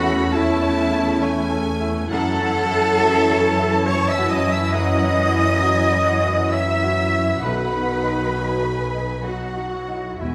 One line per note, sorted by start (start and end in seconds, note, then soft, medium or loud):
0.00 2.06 E2 medium
0.00 2.07 E2 medium
0.00 1.94 A3 medium
0.00 2.11 A3 medium
0.00 0.21 C#4 medium
0.00 1.94 C#4 medium
0.00 2.07 C#4 medium
0.00 0.03 E4 medium
0.00 0.50 E4 medium
0.00 0.33 F#4 medium
0.00 0.34 F#4 loud
0.00 0.32 F#5 loud
0.00 0.36 F#5 loud
0.00 0.33 B5 medium
0.32 1.63 E4 medium
0.32 1.66 E4 medium
0.32 0.79 A4 medium
0.32 1.64 E5 medium
0.32 1.66 E5 medium
0.32 1.21 A5 loud
0.62 1.09 C#5 medium
0.92 1.39 E5 medium
1.21 1.70 C#5 medium
1.21 2.11 G#5 medium
1.50 1.99 A4 medium
1.80 2.10 E4 medium
2.10 4.70 F#2 medium
2.10 7.39 F#2 medium
2.10 7.39 E3 medium
2.10 7.39 F#3 medium
2.10 7.39 C#4 medium
2.10 7.43 E4 medium
2.10 3.88 A4 loud
2.10 3.83 A4 loud
2.10 2.97 F#5 medium
2.10 3.83 A5 loud
2.10 3.89 A5 loud
2.41 2.88 C#4 medium
2.70 3.17 E4 medium
2.99 3.46 F#4 medium
2.99 3.43 E5 medium
3.30 3.76 C#5 medium
3.41 4.73 A5 medium
3.59 4.05 E5 medium
3.86 4.10 C#5 medium
3.86 4.09 C#5 loud
3.86 4.34 C#5 medium
3.86 4.12 C#6 medium
3.86 4.09 C#6 loud
4.09 4.31 E5 medium
4.09 4.31 E5 loud
4.09 4.35 E6 medium
4.09 4.31 E6 medium
4.18 4.64 F#4 medium
4.30 4.53 D#5 medium
4.30 4.52 D#5 medium
4.30 4.52 D#6 medium
4.30 4.56 D#6 medium
4.46 4.92 E4 medium
4.51 4.74 E5 medium
4.51 4.75 E6 medium
4.51 4.77 E6 medium
4.73 7.39 F#2 medium
4.73 6.54 D#5 loud
4.73 6.52 D#5 loud
4.73 5.62 F#5 medium
4.73 6.49 D#6 loud
4.73 6.52 D#6 loud
5.03 5.50 C#4 medium
5.34 5.81 E4 medium
5.61 6.10 F#4 medium
5.61 6.06 G#5 medium
5.92 6.40 C#5 medium
6.07 6.52 F#5 medium
6.23 6.71 E4 soft
6.51 7.00 C#5 soft
6.51 7.43 E5 medium
6.51 7.43 E5 loud
6.51 7.40 E6 medium
6.51 7.44 E6 medium
6.83 7.31 F#4 soft
7.13 7.43 E4 soft
7.42 10.17 B1 medium
7.42 8.75 B2 medium
7.42 9.07 D#3 medium
7.42 9.21 F#3 medium
7.42 9.21 D#4 medium
7.42 9.07 F#4 medium
7.42 9.21 B4 medium
7.42 8.93 B4 medium
7.42 8.32 F#5 medium
7.42 8.96 B5 medium
7.42 9.25 B5 medium
7.73 8.21 B3 soft
8.03 8.51 D#4 soft
8.33 8.82 F#4 soft
8.33 9.23 G#5 medium
8.63 9.12 B4 soft
8.94 9.44 D#5 soft
9.22 10.18 F#3 soft
9.22 10.19 F#3 soft
9.22 9.71 D#4 soft
9.22 10.18 F#4 soft
9.22 10.21 F#4 medium
9.22 10.22 F#4 medium
9.22 9.75 B4 soft
9.22 10.21 F#5 medium
9.57 10.08 F#4 soft
9.73 10.21 E4 soft
9.88 10.21 D#4 soft
10.19 10.35 E2 soft
10.19 10.35 E2 medium
10.19 10.35 E2 soft
10.19 10.35 G#3 soft
10.19 10.35 E4 soft
10.19 10.35 F#4 soft
10.19 10.35 E5 soft
10.24 10.35 G#5 soft